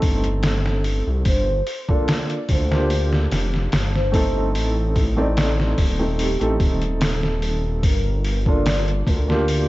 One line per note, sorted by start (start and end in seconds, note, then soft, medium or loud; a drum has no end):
0.00 1.02 G1 medium
0.00 1.23 A3 medium
0.00 1.23 C4 medium
0.00 1.24 D#4 medium
0.00 1.24 A4 medium
0.00 kick medium
0.00 open hi-hat medium
0.24 closed hi-hat soft
0.43 snare loud
0.43 open hi-hat medium
0.66 snare soft
0.84 open hi-hat medium
1.07 1.24 C2 medium
1.25 1.62 G1 loud
1.25 1.82 C5 medium
1.25 kick loud
1.25 open hi-hat medium
1.67 open hi-hat medium
1.88 2.65 A#3 medium
1.88 2.66 D4 medium
1.88 2.66 F4 medium
1.88 2.66 A4 medium
1.88 2.44 D5 loud
1.88 kick medium
2.08 snare loud
2.08 open hi-hat medium
2.30 closed hi-hat soft
2.49 3.28 D2 medium
2.49 3.06 C5 medium
2.49 kick medium
2.49 open hi-hat medium
2.71 4.09 A#3 medium
2.71 4.09 D4 medium
2.71 4.10 F4 medium
2.71 4.10 G4 medium
2.71 snare medium
2.90 open hi-hat medium
3.13 snare soft
3.32 3.68 F1 loud
3.32 snare soft
3.32 open hi-hat medium
3.54 snare soft
3.72 4.57 G1 medium
3.72 snare loud
3.72 open hi-hat medium
3.95 4.49 C5 loud
3.95 snare soft
4.12 5.11 A3 medium
4.12 5.12 C4 medium
4.12 5.13 D#4 medium
4.12 5.13 A4 medium
4.12 kick medium
4.12 open hi-hat medium
4.55 5.75 A1 medium
4.55 open hi-hat medium
4.96 kick medium
4.96 open hi-hat medium
5.17 5.94 A3 medium
5.17 5.94 C4 medium
5.17 5.95 D#4 medium
5.17 5.95 D5 medium
5.37 snare loud
5.37 open hi-hat medium
5.60 snare soft
5.78 6.37 D#1 medium
5.78 kick medium
5.78 open hi-hat medium
5.99 6.35 A3 medium
5.99 6.35 C4 medium
5.99 6.36 D#4 medium
5.99 6.36 A4 medium
6.19 6.57 G4 medium
6.19 open hi-hat medium
6.40 6.58 A1 medium
6.40 7.80 A3 medium
6.40 7.81 C4 medium
6.40 7.81 D#4 medium
6.40 7.82 A4 medium
6.40 closed hi-hat soft
6.60 7.85 D#1 medium
6.60 kick loud
6.60 open hi-hat medium
6.82 closed hi-hat soft
7.01 snare loud
7.01 open hi-hat medium
7.23 snare soft
7.42 open hi-hat medium
7.83 9.03 G1 medium
7.83 8.40 A#4 loud
7.83 kick loud
7.83 open hi-hat medium
8.24 open hi-hat medium
8.46 9.24 A#3 medium
8.46 9.24 D4 medium
8.46 9.24 F4 medium
8.46 9.24 A4 medium
8.46 9.01 D5 medium
8.46 kick medium
8.66 snare loud
8.66 open hi-hat medium
8.88 closed hi-hat soft
9.07 9.68 D2 medium
9.07 9.64 A#4 loud
9.07 kick medium
9.07 open hi-hat medium
9.28 9.68 A#3 medium
9.28 9.68 D4 medium
9.28 9.68 F4 medium
9.28 9.68 G4 medium
9.28 snare medium
9.48 open hi-hat medium